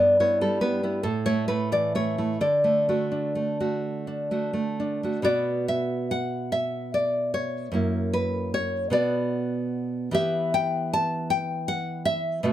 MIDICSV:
0, 0, Header, 1, 2, 480
1, 0, Start_track
1, 0, Key_signature, 2, "major"
1, 0, Tempo, 858369
1, 826, Tempo, 943396
1, 1299, Time_signature, 6, 3, 24, 8
1, 2745, Key_signature, 2, "minor"
1, 2746, Tempo, 860832
1, 3226, Tempo, 803213
1, 5626, Tempo, 779221
1, 7104, End_track
2, 0, Start_track
2, 0, Title_t, "Nylon-string guitar"
2, 0, Program_c, 0, 24
2, 0, Note_on_c, 0, 43, 67
2, 0, Note_on_c, 0, 59, 50
2, 0, Note_on_c, 0, 74, 98
2, 97, Note_off_c, 0, 74, 0
2, 104, Note_off_c, 0, 59, 0
2, 111, Note_on_c, 0, 59, 47
2, 113, Note_on_c, 0, 64, 55
2, 113, Note_on_c, 0, 73, 75
2, 223, Note_off_c, 0, 73, 0
2, 230, Note_on_c, 0, 55, 49
2, 232, Note_on_c, 0, 69, 77
2, 338, Note_off_c, 0, 59, 0
2, 340, Note_off_c, 0, 69, 0
2, 342, Note_on_c, 0, 71, 87
2, 344, Note_on_c, 0, 59, 52
2, 460, Note_off_c, 0, 64, 0
2, 461, Note_off_c, 0, 59, 0
2, 466, Note_on_c, 0, 64, 46
2, 469, Note_on_c, 0, 59, 43
2, 561, Note_off_c, 0, 43, 0
2, 570, Note_off_c, 0, 71, 0
2, 571, Note_off_c, 0, 64, 0
2, 572, Note_off_c, 0, 59, 0
2, 578, Note_on_c, 0, 69, 82
2, 579, Note_on_c, 0, 45, 63
2, 583, Note_off_c, 0, 55, 0
2, 701, Note_off_c, 0, 69, 0
2, 703, Note_on_c, 0, 73, 93
2, 704, Note_on_c, 0, 57, 54
2, 822, Note_off_c, 0, 57, 0
2, 825, Note_off_c, 0, 73, 0
2, 827, Note_on_c, 0, 71, 74
2, 829, Note_on_c, 0, 57, 45
2, 834, Note_on_c, 0, 64, 51
2, 942, Note_off_c, 0, 71, 0
2, 948, Note_on_c, 0, 52, 48
2, 951, Note_on_c, 0, 74, 86
2, 1061, Note_off_c, 0, 57, 0
2, 1064, Note_off_c, 0, 74, 0
2, 1066, Note_on_c, 0, 57, 48
2, 1069, Note_on_c, 0, 73, 76
2, 1178, Note_off_c, 0, 64, 0
2, 1180, Note_off_c, 0, 57, 0
2, 1185, Note_on_c, 0, 57, 40
2, 1185, Note_on_c, 0, 64, 43
2, 1280, Note_off_c, 0, 45, 0
2, 1291, Note_off_c, 0, 57, 0
2, 1291, Note_off_c, 0, 64, 0
2, 1294, Note_off_c, 0, 73, 0
2, 1297, Note_off_c, 0, 52, 0
2, 1299, Note_on_c, 0, 50, 57
2, 1301, Note_on_c, 0, 74, 82
2, 1418, Note_on_c, 0, 57, 42
2, 1538, Note_off_c, 0, 57, 0
2, 1544, Note_on_c, 0, 57, 42
2, 1544, Note_on_c, 0, 66, 45
2, 1660, Note_on_c, 0, 62, 46
2, 1775, Note_off_c, 0, 57, 0
2, 1781, Note_on_c, 0, 57, 43
2, 1902, Note_off_c, 0, 57, 0
2, 1902, Note_off_c, 0, 66, 0
2, 1908, Note_on_c, 0, 57, 40
2, 1909, Note_on_c, 0, 66, 44
2, 2140, Note_off_c, 0, 62, 0
2, 2146, Note_on_c, 0, 62, 49
2, 2262, Note_off_c, 0, 57, 0
2, 2263, Note_off_c, 0, 66, 0
2, 2268, Note_on_c, 0, 57, 39
2, 2270, Note_on_c, 0, 66, 44
2, 2376, Note_off_c, 0, 57, 0
2, 2382, Note_on_c, 0, 57, 45
2, 2487, Note_off_c, 0, 74, 0
2, 2509, Note_off_c, 0, 62, 0
2, 2515, Note_on_c, 0, 62, 45
2, 2629, Note_off_c, 0, 57, 0
2, 2635, Note_off_c, 0, 66, 0
2, 2635, Note_on_c, 0, 57, 37
2, 2641, Note_on_c, 0, 66, 42
2, 2725, Note_off_c, 0, 50, 0
2, 2732, Note_on_c, 0, 47, 57
2, 2734, Note_off_c, 0, 57, 0
2, 2736, Note_off_c, 0, 66, 0
2, 2736, Note_on_c, 0, 59, 48
2, 2742, Note_on_c, 0, 66, 48
2, 2743, Note_on_c, 0, 74, 97
2, 2749, Note_off_c, 0, 62, 0
2, 2977, Note_off_c, 0, 74, 0
2, 2987, Note_on_c, 0, 76, 90
2, 3215, Note_off_c, 0, 76, 0
2, 3225, Note_on_c, 0, 78, 94
2, 3462, Note_off_c, 0, 78, 0
2, 3470, Note_on_c, 0, 76, 88
2, 3705, Note_off_c, 0, 76, 0
2, 3721, Note_on_c, 0, 74, 89
2, 3952, Note_off_c, 0, 74, 0
2, 3959, Note_on_c, 0, 73, 86
2, 4168, Note_off_c, 0, 47, 0
2, 4169, Note_off_c, 0, 59, 0
2, 4174, Note_off_c, 0, 66, 0
2, 4184, Note_on_c, 0, 42, 59
2, 4196, Note_on_c, 0, 58, 52
2, 4203, Note_on_c, 0, 64, 47
2, 4415, Note_off_c, 0, 73, 0
2, 4435, Note_on_c, 0, 71, 90
2, 4660, Note_off_c, 0, 71, 0
2, 4677, Note_on_c, 0, 73, 94
2, 4877, Note_off_c, 0, 42, 0
2, 4883, Note_off_c, 0, 58, 0
2, 4886, Note_off_c, 0, 64, 0
2, 4893, Note_on_c, 0, 47, 61
2, 4900, Note_on_c, 0, 59, 47
2, 4901, Note_off_c, 0, 73, 0
2, 4905, Note_on_c, 0, 66, 51
2, 4909, Note_on_c, 0, 74, 91
2, 5597, Note_off_c, 0, 47, 0
2, 5601, Note_off_c, 0, 59, 0
2, 5602, Note_off_c, 0, 74, 0
2, 5604, Note_off_c, 0, 66, 0
2, 5617, Note_on_c, 0, 52, 66
2, 5623, Note_on_c, 0, 59, 52
2, 5627, Note_on_c, 0, 67, 55
2, 5636, Note_on_c, 0, 76, 111
2, 5864, Note_off_c, 0, 76, 0
2, 5880, Note_on_c, 0, 79, 100
2, 6107, Note_off_c, 0, 79, 0
2, 6123, Note_on_c, 0, 81, 102
2, 6345, Note_off_c, 0, 81, 0
2, 6350, Note_on_c, 0, 79, 99
2, 6574, Note_off_c, 0, 79, 0
2, 6583, Note_on_c, 0, 78, 106
2, 6810, Note_off_c, 0, 78, 0
2, 6813, Note_on_c, 0, 76, 107
2, 7036, Note_off_c, 0, 52, 0
2, 7039, Note_off_c, 0, 59, 0
2, 7041, Note_off_c, 0, 67, 0
2, 7045, Note_on_c, 0, 47, 76
2, 7050, Note_on_c, 0, 57, 56
2, 7058, Note_on_c, 0, 66, 59
2, 7104, Note_off_c, 0, 47, 0
2, 7104, Note_off_c, 0, 57, 0
2, 7104, Note_off_c, 0, 66, 0
2, 7104, Note_off_c, 0, 76, 0
2, 7104, End_track
0, 0, End_of_file